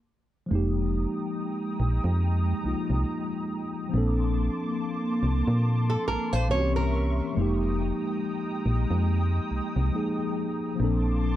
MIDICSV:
0, 0, Header, 1, 5, 480
1, 0, Start_track
1, 0, Tempo, 857143
1, 286, Time_signature, 4, 2, 24, 8
1, 6364, End_track
2, 0, Start_track
2, 0, Title_t, "Analog synth pad"
2, 0, Program_c, 0, 89
2, 288, Note_on_c, 0, 79, 77
2, 288, Note_on_c, 0, 82, 76
2, 289, Note_on_c, 0, 56, 78
2, 289, Note_on_c, 0, 87, 92
2, 2188, Note_off_c, 0, 56, 0
2, 2188, Note_off_c, 0, 79, 0
2, 2188, Note_off_c, 0, 82, 0
2, 2189, Note_off_c, 0, 87, 0
2, 2208, Note_on_c, 0, 58, 81
2, 2208, Note_on_c, 0, 81, 78
2, 2208, Note_on_c, 0, 84, 74
2, 2208, Note_on_c, 0, 86, 91
2, 3633, Note_off_c, 0, 58, 0
2, 3633, Note_off_c, 0, 81, 0
2, 3633, Note_off_c, 0, 86, 0
2, 3648, Note_on_c, 0, 85, 85
2, 3649, Note_on_c, 0, 70, 80
2, 3649, Note_on_c, 0, 76, 69
2, 4108, Note_off_c, 0, 84, 0
2, 4122, Note_off_c, 0, 85, 0
2, 4123, Note_off_c, 0, 70, 0
2, 4123, Note_off_c, 0, 76, 0
2, 4127, Note_on_c, 0, 56, 85
2, 4127, Note_on_c, 0, 79, 76
2, 4127, Note_on_c, 0, 82, 75
2, 4128, Note_on_c, 0, 87, 90
2, 6027, Note_off_c, 0, 79, 0
2, 6027, Note_off_c, 0, 82, 0
2, 6028, Note_off_c, 0, 56, 0
2, 6028, Note_off_c, 0, 87, 0
2, 6046, Note_on_c, 0, 81, 78
2, 6046, Note_on_c, 0, 84, 77
2, 6047, Note_on_c, 0, 58, 87
2, 6047, Note_on_c, 0, 86, 88
2, 6364, Note_off_c, 0, 58, 0
2, 6364, Note_off_c, 0, 81, 0
2, 6364, Note_off_c, 0, 84, 0
2, 6364, Note_off_c, 0, 86, 0
2, 6364, End_track
3, 0, Start_track
3, 0, Title_t, "Nylon-string guitar"
3, 0, Program_c, 1, 24
3, 3304, Note_on_c, 1, 69, 72
3, 3400, Note_off_c, 1, 69, 0
3, 3405, Note_on_c, 1, 70, 87
3, 3544, Note_off_c, 1, 70, 0
3, 3544, Note_on_c, 1, 72, 86
3, 3641, Note_off_c, 1, 72, 0
3, 3644, Note_on_c, 1, 73, 82
3, 3778, Note_off_c, 1, 73, 0
3, 3784, Note_on_c, 1, 70, 75
3, 4108, Note_off_c, 1, 70, 0
3, 6364, End_track
4, 0, Start_track
4, 0, Title_t, "Tine electric piano"
4, 0, Program_c, 2, 4
4, 260, Note_on_c, 2, 53, 72
4, 274, Note_on_c, 2, 56, 62
4, 285, Note_on_c, 2, 58, 66
4, 298, Note_on_c, 2, 63, 64
4, 311, Note_on_c, 2, 67, 79
4, 400, Control_c, 2, 64, 127
4, 1451, Note_off_c, 2, 53, 0
4, 1458, Note_off_c, 2, 56, 0
4, 1463, Note_off_c, 2, 58, 0
4, 1470, Note_off_c, 2, 63, 0
4, 1473, Note_on_c, 2, 53, 53
4, 1476, Note_off_c, 2, 67, 0
4, 1479, Note_on_c, 2, 56, 51
4, 1486, Note_on_c, 2, 58, 50
4, 1492, Note_on_c, 2, 63, 49
4, 1498, Note_on_c, 2, 65, 57
4, 2173, Note_off_c, 2, 53, 0
4, 2180, Note_on_c, 2, 53, 71
4, 2186, Note_off_c, 2, 58, 0
4, 2192, Note_on_c, 2, 58, 68
4, 2203, Note_off_c, 2, 56, 0
4, 2204, Note_on_c, 2, 60, 68
4, 2209, Note_off_c, 2, 63, 0
4, 2212, Note_off_c, 2, 65, 0
4, 2213, Control_c, 2, 64, 0
4, 2216, Note_on_c, 2, 62, 64
4, 2228, Note_on_c, 2, 69, 82
4, 2327, Control_c, 2, 64, 127
4, 3406, Note_on_c, 2, 81, 70
4, 3535, Note_off_c, 2, 81, 0
4, 3544, Note_on_c, 2, 77, 68
4, 3611, Note_off_c, 2, 53, 0
4, 3617, Note_off_c, 2, 58, 0
4, 3623, Note_off_c, 2, 60, 0
4, 3629, Note_off_c, 2, 62, 0
4, 3632, Note_on_c, 2, 52, 78
4, 3635, Note_off_c, 2, 69, 0
4, 3639, Note_off_c, 2, 77, 0
4, 3639, Note_on_c, 2, 58, 68
4, 3644, Note_on_c, 2, 60, 70
4, 3645, Note_on_c, 2, 73, 74
4, 3651, Note_on_c, 2, 61, 72
4, 3654, Control_c, 2, 64, 0
4, 3657, Note_on_c, 2, 66, 70
4, 3694, Note_off_c, 2, 66, 0
4, 3694, Note_on_c, 2, 67, 84
4, 3742, Control_c, 2, 64, 127
4, 4102, Note_on_c, 2, 53, 76
4, 4103, Note_off_c, 2, 73, 0
4, 4115, Note_on_c, 2, 56, 65
4, 4119, Note_off_c, 2, 52, 0
4, 4120, Note_off_c, 2, 58, 0
4, 4125, Note_off_c, 2, 60, 0
4, 4127, Note_on_c, 2, 58, 70
4, 4129, Note_off_c, 2, 61, 0
4, 4133, Control_c, 2, 64, 0
4, 4139, Note_on_c, 2, 63, 67
4, 4145, Note_off_c, 2, 67, 0
4, 4151, Note_on_c, 2, 67, 84
4, 4227, Control_c, 2, 64, 127
4, 5532, Note_off_c, 2, 53, 0
4, 5538, Note_off_c, 2, 56, 0
4, 5544, Note_off_c, 2, 58, 0
4, 5550, Note_off_c, 2, 63, 0
4, 5554, Note_on_c, 2, 53, 61
4, 5556, Note_off_c, 2, 67, 0
4, 5560, Note_on_c, 2, 56, 51
4, 5566, Note_on_c, 2, 58, 55
4, 5573, Note_on_c, 2, 63, 53
4, 5578, Note_on_c, 2, 68, 64
4, 6015, Note_off_c, 2, 53, 0
4, 6022, Note_on_c, 2, 53, 73
4, 6027, Note_off_c, 2, 58, 0
4, 6034, Note_on_c, 2, 58, 68
4, 6043, Note_off_c, 2, 56, 0
4, 6046, Note_on_c, 2, 60, 66
4, 6049, Note_off_c, 2, 63, 0
4, 6052, Note_off_c, 2, 68, 0
4, 6054, Control_c, 2, 64, 0
4, 6058, Note_on_c, 2, 62, 70
4, 6070, Note_on_c, 2, 69, 81
4, 6138, Control_c, 2, 64, 127
4, 6364, Note_off_c, 2, 53, 0
4, 6364, Note_off_c, 2, 58, 0
4, 6364, Note_off_c, 2, 60, 0
4, 6364, Note_off_c, 2, 62, 0
4, 6364, Note_off_c, 2, 69, 0
4, 6364, End_track
5, 0, Start_track
5, 0, Title_t, "FM bass"
5, 0, Program_c, 3, 39
5, 288, Note_on_c, 3, 29, 104
5, 596, Note_off_c, 3, 29, 0
5, 1007, Note_on_c, 3, 34, 93
5, 1120, Note_off_c, 3, 34, 0
5, 1144, Note_on_c, 3, 41, 102
5, 1422, Note_off_c, 3, 41, 0
5, 1485, Note_on_c, 3, 36, 49
5, 1541, Note_off_c, 3, 36, 0
5, 1625, Note_on_c, 3, 36, 92
5, 1707, Note_off_c, 3, 36, 0
5, 2207, Note_on_c, 3, 34, 100
5, 2515, Note_off_c, 3, 34, 0
5, 2927, Note_on_c, 3, 36, 93
5, 3040, Note_off_c, 3, 36, 0
5, 3066, Note_on_c, 3, 46, 96
5, 3343, Note_off_c, 3, 46, 0
5, 3407, Note_on_c, 3, 34, 46
5, 3463, Note_off_c, 3, 34, 0
5, 3546, Note_on_c, 3, 34, 86
5, 3647, Note_on_c, 3, 36, 105
5, 3655, Note_off_c, 3, 34, 0
5, 4037, Note_off_c, 3, 36, 0
5, 4126, Note_on_c, 3, 29, 97
5, 4435, Note_off_c, 3, 29, 0
5, 4847, Note_on_c, 3, 34, 94
5, 4960, Note_off_c, 3, 34, 0
5, 4985, Note_on_c, 3, 41, 102
5, 5263, Note_off_c, 3, 41, 0
5, 5326, Note_on_c, 3, 36, 49
5, 5382, Note_off_c, 3, 36, 0
5, 5467, Note_on_c, 3, 36, 97
5, 5548, Note_off_c, 3, 36, 0
5, 6047, Note_on_c, 3, 34, 100
5, 6355, Note_off_c, 3, 34, 0
5, 6364, End_track
0, 0, End_of_file